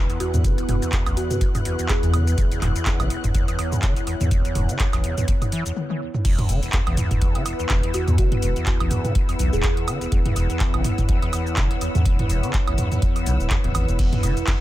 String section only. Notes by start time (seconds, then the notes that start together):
Already playing: E4 B4 F#5 E6
0.18 F#6
6.25 E4
6.39 F#5
6.46 E6
6.76 B4